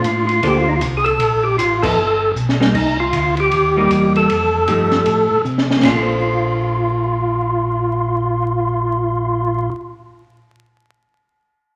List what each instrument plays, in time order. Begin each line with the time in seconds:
Already playing: tonewheel organ F4
0.04 tonewheel organ A2, hi-hat pedal, ride
0.27 tonewheel organ F4, ride
0.43 tonewheel organ D2, hollow-body jazz guitar A#3 D4 A4 C5, ride
0.47 tonewheel organ G4
0.58 tonewheel organ F4
0.69 tonewheel organ D#4
0.76 tonewheel organ C2 F4
0.81 hi-hat pedal, ride
0.97 tonewheel organ G#4
1.04 tonewheel organ A4, ride
1.19 tonewheel organ A#1, ride
1.44 tonewheel organ G4
1.57 tonewheel organ A1 F4, hi-hat pedal, ride
1.83 hollow-body jazz guitar F3 B3 D#4, tonewheel organ A4, kick, crash
1.96 tonewheel organ G1
2.35 tonewheel organ B1, hi-hat pedal
2.49 snare
2.60 hollow-body jazz guitar G3 A#3 D#4, snare
2.74 tonewheel organ C2 D#4, kick, crash
3.00 tonewheel organ F4
3.12 tonewheel organ D2, hi-hat pedal, ride
3.37 tonewheel organ G4, ride
3.51 tonewheel organ D#2, ride
3.77 hollow-body jazz guitar G3 A#3 D#4, tonewheel organ G4
3.89 tonewheel organ E2, hi-hat pedal, ride
4.16 tonewheel organ A4, ride
4.29 tonewheel organ F2, ride
4.67 tonewheel organ G2, hollow-body jazz guitar F3 A3 D#4 G4, hi-hat pedal, ride
4.92 snare, ride
5.06 tonewheel organ A2, ride
5.31 tonewheel organ A2
5.45 tonewheel organ C3, hi-hat pedal
5.58 snare
5.71 snare
5.77 hollow-body jazz guitar A#3
5.83 tonewheel organ A#1 F4, snare, ride bell
5.88 hollow-body jazz guitar D4
5.96 hollow-body jazz guitar A4
6.02 hollow-body jazz guitar C5